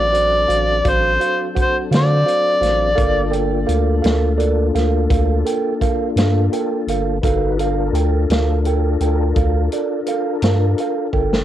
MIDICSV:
0, 0, Header, 1, 6, 480
1, 0, Start_track
1, 0, Key_signature, -2, "minor"
1, 0, Tempo, 709220
1, 2019, Time_signature, 12, 3, 24, 8
1, 7745, End_track
2, 0, Start_track
2, 0, Title_t, "Harmonica"
2, 0, Program_c, 0, 22
2, 0, Note_on_c, 0, 74, 80
2, 597, Note_on_c, 0, 72, 79
2, 607, Note_off_c, 0, 74, 0
2, 974, Note_off_c, 0, 72, 0
2, 1089, Note_on_c, 0, 72, 71
2, 1190, Note_off_c, 0, 72, 0
2, 1326, Note_on_c, 0, 74, 75
2, 2245, Note_off_c, 0, 74, 0
2, 7745, End_track
3, 0, Start_track
3, 0, Title_t, "Tine electric piano"
3, 0, Program_c, 1, 4
3, 84, Note_on_c, 1, 66, 47
3, 87, Note_on_c, 1, 74, 55
3, 90, Note_on_c, 1, 72, 46
3, 272, Note_off_c, 1, 66, 0
3, 273, Note_off_c, 1, 74, 0
3, 274, Note_off_c, 1, 72, 0
3, 326, Note_on_c, 1, 66, 50
3, 326, Note_on_c, 1, 77, 52
3, 329, Note_on_c, 1, 72, 46
3, 512, Note_off_c, 1, 77, 0
3, 513, Note_off_c, 1, 66, 0
3, 514, Note_off_c, 1, 72, 0
3, 573, Note_on_c, 1, 77, 53
3, 574, Note_on_c, 1, 66, 49
3, 577, Note_on_c, 1, 72, 44
3, 756, Note_off_c, 1, 66, 0
3, 756, Note_off_c, 1, 77, 0
3, 758, Note_off_c, 1, 72, 0
3, 810, Note_on_c, 1, 66, 52
3, 811, Note_on_c, 1, 72, 43
3, 816, Note_on_c, 1, 77, 52
3, 995, Note_off_c, 1, 66, 0
3, 995, Note_off_c, 1, 72, 0
3, 998, Note_off_c, 1, 77, 0
3, 1049, Note_on_c, 1, 66, 49
3, 1050, Note_on_c, 1, 72, 46
3, 1051, Note_on_c, 1, 78, 54
3, 1234, Note_off_c, 1, 66, 0
3, 1235, Note_off_c, 1, 72, 0
3, 1235, Note_off_c, 1, 78, 0
3, 1291, Note_on_c, 1, 66, 51
3, 1295, Note_on_c, 1, 77, 54
3, 1296, Note_on_c, 1, 72, 42
3, 1475, Note_off_c, 1, 66, 0
3, 1477, Note_off_c, 1, 77, 0
3, 1478, Note_off_c, 1, 72, 0
3, 1526, Note_on_c, 1, 66, 48
3, 1528, Note_on_c, 1, 72, 44
3, 1529, Note_on_c, 1, 77, 55
3, 1713, Note_off_c, 1, 66, 0
3, 1714, Note_off_c, 1, 72, 0
3, 1714, Note_off_c, 1, 77, 0
3, 1764, Note_on_c, 1, 66, 50
3, 1766, Note_on_c, 1, 72, 48
3, 1770, Note_on_c, 1, 77, 55
3, 1952, Note_off_c, 1, 66, 0
3, 1953, Note_off_c, 1, 72, 0
3, 1955, Note_off_c, 1, 77, 0
3, 1999, Note_on_c, 1, 69, 67
3, 1999, Note_on_c, 1, 77, 73
3, 2002, Note_on_c, 1, 70, 59
3, 2189, Note_off_c, 1, 69, 0
3, 2189, Note_off_c, 1, 77, 0
3, 2190, Note_off_c, 1, 70, 0
3, 2239, Note_on_c, 1, 69, 62
3, 2239, Note_on_c, 1, 70, 54
3, 2243, Note_on_c, 1, 79, 65
3, 2429, Note_off_c, 1, 69, 0
3, 2429, Note_off_c, 1, 70, 0
3, 2431, Note_off_c, 1, 79, 0
3, 2482, Note_on_c, 1, 69, 55
3, 2482, Note_on_c, 1, 77, 64
3, 2484, Note_on_c, 1, 70, 50
3, 2670, Note_off_c, 1, 69, 0
3, 2670, Note_off_c, 1, 77, 0
3, 2671, Note_off_c, 1, 70, 0
3, 2722, Note_on_c, 1, 77, 60
3, 2724, Note_on_c, 1, 70, 51
3, 2725, Note_on_c, 1, 69, 58
3, 2910, Note_off_c, 1, 77, 0
3, 2911, Note_off_c, 1, 70, 0
3, 2912, Note_off_c, 1, 69, 0
3, 2960, Note_on_c, 1, 69, 61
3, 2964, Note_on_c, 1, 74, 67
3, 2965, Note_on_c, 1, 70, 54
3, 3149, Note_off_c, 1, 69, 0
3, 3151, Note_off_c, 1, 70, 0
3, 3151, Note_off_c, 1, 74, 0
3, 3215, Note_on_c, 1, 69, 61
3, 3216, Note_on_c, 1, 77, 62
3, 3218, Note_on_c, 1, 70, 50
3, 3396, Note_off_c, 1, 69, 0
3, 3397, Note_off_c, 1, 77, 0
3, 3398, Note_off_c, 1, 70, 0
3, 3450, Note_on_c, 1, 70, 49
3, 3454, Note_on_c, 1, 69, 54
3, 3458, Note_on_c, 1, 77, 61
3, 3634, Note_off_c, 1, 70, 0
3, 3636, Note_off_c, 1, 69, 0
3, 3638, Note_off_c, 1, 77, 0
3, 3690, Note_on_c, 1, 69, 58
3, 3696, Note_on_c, 1, 70, 57
3, 3700, Note_on_c, 1, 79, 67
3, 3874, Note_off_c, 1, 69, 0
3, 3877, Note_off_c, 1, 70, 0
3, 3879, Note_off_c, 1, 79, 0
3, 3934, Note_on_c, 1, 69, 54
3, 3937, Note_on_c, 1, 70, 57
3, 3937, Note_on_c, 1, 77, 69
3, 4116, Note_off_c, 1, 69, 0
3, 4117, Note_off_c, 1, 70, 0
3, 4117, Note_off_c, 1, 77, 0
3, 4180, Note_on_c, 1, 69, 55
3, 4180, Note_on_c, 1, 70, 49
3, 4182, Note_on_c, 1, 77, 63
3, 4359, Note_off_c, 1, 69, 0
3, 4359, Note_off_c, 1, 70, 0
3, 4360, Note_off_c, 1, 77, 0
3, 4415, Note_on_c, 1, 69, 54
3, 4419, Note_on_c, 1, 79, 57
3, 4421, Note_on_c, 1, 70, 50
3, 4596, Note_off_c, 1, 69, 0
3, 4598, Note_off_c, 1, 79, 0
3, 4599, Note_off_c, 1, 70, 0
3, 4664, Note_on_c, 1, 69, 56
3, 4664, Note_on_c, 1, 70, 48
3, 4668, Note_on_c, 1, 77, 63
3, 4841, Note_off_c, 1, 69, 0
3, 4841, Note_off_c, 1, 70, 0
3, 4842, Note_off_c, 1, 77, 0
3, 4902, Note_on_c, 1, 70, 60
3, 4903, Note_on_c, 1, 69, 67
3, 4904, Note_on_c, 1, 77, 73
3, 5079, Note_off_c, 1, 70, 0
3, 5080, Note_off_c, 1, 69, 0
3, 5080, Note_off_c, 1, 77, 0
3, 5141, Note_on_c, 1, 69, 58
3, 5146, Note_on_c, 1, 70, 52
3, 5146, Note_on_c, 1, 77, 67
3, 5319, Note_off_c, 1, 69, 0
3, 5321, Note_off_c, 1, 70, 0
3, 5321, Note_off_c, 1, 77, 0
3, 5377, Note_on_c, 1, 70, 49
3, 5381, Note_on_c, 1, 79, 59
3, 5385, Note_on_c, 1, 69, 57
3, 5557, Note_off_c, 1, 70, 0
3, 5559, Note_off_c, 1, 79, 0
3, 5560, Note_off_c, 1, 69, 0
3, 5623, Note_on_c, 1, 70, 53
3, 5625, Note_on_c, 1, 69, 54
3, 5626, Note_on_c, 1, 77, 57
3, 5800, Note_off_c, 1, 69, 0
3, 5800, Note_off_c, 1, 70, 0
3, 5801, Note_off_c, 1, 77, 0
3, 5862, Note_on_c, 1, 70, 54
3, 5865, Note_on_c, 1, 79, 62
3, 5867, Note_on_c, 1, 69, 60
3, 6039, Note_off_c, 1, 70, 0
3, 6040, Note_off_c, 1, 79, 0
3, 6041, Note_off_c, 1, 69, 0
3, 6100, Note_on_c, 1, 79, 62
3, 6101, Note_on_c, 1, 70, 51
3, 6102, Note_on_c, 1, 69, 54
3, 6278, Note_off_c, 1, 79, 0
3, 6279, Note_off_c, 1, 69, 0
3, 6279, Note_off_c, 1, 70, 0
3, 6337, Note_on_c, 1, 70, 51
3, 6341, Note_on_c, 1, 69, 56
3, 6341, Note_on_c, 1, 77, 58
3, 6516, Note_off_c, 1, 70, 0
3, 6518, Note_off_c, 1, 69, 0
3, 6518, Note_off_c, 1, 77, 0
3, 6585, Note_on_c, 1, 69, 54
3, 6585, Note_on_c, 1, 70, 48
3, 6586, Note_on_c, 1, 74, 62
3, 6760, Note_off_c, 1, 69, 0
3, 6760, Note_off_c, 1, 70, 0
3, 6760, Note_off_c, 1, 74, 0
3, 6817, Note_on_c, 1, 69, 54
3, 6820, Note_on_c, 1, 70, 53
3, 6825, Note_on_c, 1, 77, 66
3, 6996, Note_off_c, 1, 69, 0
3, 6998, Note_off_c, 1, 70, 0
3, 7000, Note_off_c, 1, 77, 0
3, 7066, Note_on_c, 1, 69, 56
3, 7067, Note_on_c, 1, 77, 58
3, 7069, Note_on_c, 1, 70, 51
3, 7240, Note_off_c, 1, 69, 0
3, 7241, Note_off_c, 1, 77, 0
3, 7242, Note_off_c, 1, 70, 0
3, 7312, Note_on_c, 1, 77, 58
3, 7313, Note_on_c, 1, 69, 54
3, 7317, Note_on_c, 1, 70, 45
3, 7483, Note_off_c, 1, 77, 0
3, 7484, Note_off_c, 1, 69, 0
3, 7486, Note_off_c, 1, 70, 0
3, 7534, Note_on_c, 1, 70, 50
3, 7536, Note_on_c, 1, 69, 54
3, 7538, Note_on_c, 1, 79, 57
3, 7714, Note_off_c, 1, 70, 0
3, 7715, Note_off_c, 1, 69, 0
3, 7716, Note_off_c, 1, 79, 0
3, 7745, End_track
4, 0, Start_track
4, 0, Title_t, "Tonewheel organ"
4, 0, Program_c, 2, 16
4, 0, Note_on_c, 2, 54, 59
4, 0, Note_on_c, 2, 60, 55
4, 0, Note_on_c, 2, 62, 60
4, 0, Note_on_c, 2, 69, 57
4, 1984, Note_off_c, 2, 69, 0
4, 1987, Note_off_c, 2, 54, 0
4, 1987, Note_off_c, 2, 62, 0
4, 1988, Note_off_c, 2, 60, 0
4, 2002, Note_on_c, 2, 62, 59
4, 2005, Note_on_c, 2, 58, 59
4, 2006, Note_on_c, 2, 65, 57
4, 2007, Note_on_c, 2, 69, 61
4, 4861, Note_off_c, 2, 62, 0
4, 4863, Note_off_c, 2, 58, 0
4, 4863, Note_off_c, 2, 65, 0
4, 4864, Note_off_c, 2, 69, 0
4, 4883, Note_on_c, 2, 71, 52
4, 4888, Note_on_c, 2, 70, 55
4, 4889, Note_on_c, 2, 63, 57
4, 4889, Note_on_c, 2, 66, 51
4, 5117, Note_off_c, 2, 70, 0
4, 5120, Note_on_c, 2, 65, 57
4, 5121, Note_on_c, 2, 69, 57
4, 5125, Note_on_c, 2, 70, 58
4, 5126, Note_on_c, 2, 62, 60
4, 5129, Note_off_c, 2, 71, 0
4, 5132, Note_off_c, 2, 63, 0
4, 5133, Note_off_c, 2, 66, 0
4, 7740, Note_off_c, 2, 65, 0
4, 7740, Note_off_c, 2, 69, 0
4, 7742, Note_off_c, 2, 70, 0
4, 7743, Note_off_c, 2, 62, 0
4, 7745, End_track
5, 0, Start_track
5, 0, Title_t, "Analog synth bass"
5, 0, Program_c, 3, 38
5, 0, Note_on_c, 3, 33, 79
5, 310, Note_off_c, 3, 33, 0
5, 329, Note_on_c, 3, 33, 85
5, 555, Note_off_c, 3, 33, 0
5, 576, Note_on_c, 3, 33, 85
5, 798, Note_off_c, 3, 33, 0
5, 1293, Note_on_c, 3, 50, 87
5, 1517, Note_off_c, 3, 50, 0
5, 1767, Note_on_c, 3, 33, 78
5, 1993, Note_off_c, 3, 33, 0
5, 2018, Note_on_c, 3, 31, 99
5, 2471, Note_off_c, 3, 31, 0
5, 2493, Note_on_c, 3, 38, 89
5, 2716, Note_off_c, 3, 38, 0
5, 2738, Note_on_c, 3, 38, 82
5, 3191, Note_off_c, 3, 38, 0
5, 3215, Note_on_c, 3, 38, 82
5, 3437, Note_off_c, 3, 38, 0
5, 3455, Note_on_c, 3, 38, 92
5, 3677, Note_off_c, 3, 38, 0
5, 4169, Note_on_c, 3, 43, 84
5, 4393, Note_off_c, 3, 43, 0
5, 4651, Note_on_c, 3, 31, 77
5, 4874, Note_off_c, 3, 31, 0
5, 4895, Note_on_c, 3, 31, 100
5, 5349, Note_off_c, 3, 31, 0
5, 5364, Note_on_c, 3, 38, 96
5, 5591, Note_off_c, 3, 38, 0
5, 5615, Note_on_c, 3, 38, 84
5, 6068, Note_off_c, 3, 38, 0
5, 6093, Note_on_c, 3, 38, 81
5, 6315, Note_off_c, 3, 38, 0
5, 6336, Note_on_c, 3, 38, 93
5, 6557, Note_off_c, 3, 38, 0
5, 7056, Note_on_c, 3, 43, 82
5, 7276, Note_off_c, 3, 43, 0
5, 7539, Note_on_c, 3, 31, 78
5, 7745, Note_off_c, 3, 31, 0
5, 7745, End_track
6, 0, Start_track
6, 0, Title_t, "Drums"
6, 98, Note_on_c, 9, 42, 59
6, 165, Note_off_c, 9, 42, 0
6, 337, Note_on_c, 9, 42, 53
6, 405, Note_off_c, 9, 42, 0
6, 574, Note_on_c, 9, 42, 76
6, 576, Note_on_c, 9, 36, 87
6, 642, Note_off_c, 9, 42, 0
6, 644, Note_off_c, 9, 36, 0
6, 819, Note_on_c, 9, 42, 52
6, 886, Note_off_c, 9, 42, 0
6, 1058, Note_on_c, 9, 36, 70
6, 1060, Note_on_c, 9, 42, 56
6, 1126, Note_off_c, 9, 36, 0
6, 1128, Note_off_c, 9, 42, 0
6, 1301, Note_on_c, 9, 42, 69
6, 1314, Note_on_c, 9, 38, 88
6, 1369, Note_off_c, 9, 42, 0
6, 1382, Note_off_c, 9, 38, 0
6, 1544, Note_on_c, 9, 42, 51
6, 1612, Note_off_c, 9, 42, 0
6, 1779, Note_on_c, 9, 42, 50
6, 1792, Note_on_c, 9, 38, 26
6, 1847, Note_off_c, 9, 42, 0
6, 1860, Note_off_c, 9, 38, 0
6, 2016, Note_on_c, 9, 36, 92
6, 2016, Note_on_c, 9, 42, 67
6, 2084, Note_off_c, 9, 36, 0
6, 2084, Note_off_c, 9, 42, 0
6, 2255, Note_on_c, 9, 42, 49
6, 2323, Note_off_c, 9, 42, 0
6, 2495, Note_on_c, 9, 42, 53
6, 2563, Note_off_c, 9, 42, 0
6, 2734, Note_on_c, 9, 42, 67
6, 2747, Note_on_c, 9, 38, 95
6, 2801, Note_off_c, 9, 42, 0
6, 2814, Note_off_c, 9, 38, 0
6, 2976, Note_on_c, 9, 42, 52
6, 3044, Note_off_c, 9, 42, 0
6, 3218, Note_on_c, 9, 42, 49
6, 3231, Note_on_c, 9, 38, 25
6, 3285, Note_off_c, 9, 42, 0
6, 3298, Note_off_c, 9, 38, 0
6, 3455, Note_on_c, 9, 36, 97
6, 3455, Note_on_c, 9, 42, 67
6, 3522, Note_off_c, 9, 36, 0
6, 3523, Note_off_c, 9, 42, 0
6, 3698, Note_on_c, 9, 42, 57
6, 3766, Note_off_c, 9, 42, 0
6, 3934, Note_on_c, 9, 36, 69
6, 3937, Note_on_c, 9, 42, 58
6, 4002, Note_off_c, 9, 36, 0
6, 4005, Note_off_c, 9, 42, 0
6, 4175, Note_on_c, 9, 42, 76
6, 4187, Note_on_c, 9, 38, 88
6, 4242, Note_off_c, 9, 42, 0
6, 4255, Note_off_c, 9, 38, 0
6, 4417, Note_on_c, 9, 42, 55
6, 4485, Note_off_c, 9, 42, 0
6, 4657, Note_on_c, 9, 42, 56
6, 4725, Note_off_c, 9, 42, 0
6, 4895, Note_on_c, 9, 36, 91
6, 4898, Note_on_c, 9, 42, 73
6, 4963, Note_off_c, 9, 36, 0
6, 4965, Note_off_c, 9, 42, 0
6, 5137, Note_on_c, 9, 42, 54
6, 5205, Note_off_c, 9, 42, 0
6, 5378, Note_on_c, 9, 42, 53
6, 5446, Note_off_c, 9, 42, 0
6, 5616, Note_on_c, 9, 42, 68
6, 5629, Note_on_c, 9, 38, 90
6, 5684, Note_off_c, 9, 42, 0
6, 5697, Note_off_c, 9, 38, 0
6, 5854, Note_on_c, 9, 42, 50
6, 5922, Note_off_c, 9, 42, 0
6, 6093, Note_on_c, 9, 42, 51
6, 6161, Note_off_c, 9, 42, 0
6, 6333, Note_on_c, 9, 42, 68
6, 6335, Note_on_c, 9, 36, 91
6, 6400, Note_off_c, 9, 42, 0
6, 6403, Note_off_c, 9, 36, 0
6, 6577, Note_on_c, 9, 42, 53
6, 6645, Note_off_c, 9, 42, 0
6, 6812, Note_on_c, 9, 42, 53
6, 6880, Note_off_c, 9, 42, 0
6, 7053, Note_on_c, 9, 42, 64
6, 7066, Note_on_c, 9, 38, 89
6, 7121, Note_off_c, 9, 42, 0
6, 7134, Note_off_c, 9, 38, 0
6, 7297, Note_on_c, 9, 42, 48
6, 7364, Note_off_c, 9, 42, 0
6, 7535, Note_on_c, 9, 36, 50
6, 7602, Note_off_c, 9, 36, 0
6, 7669, Note_on_c, 9, 38, 69
6, 7737, Note_off_c, 9, 38, 0
6, 7745, End_track
0, 0, End_of_file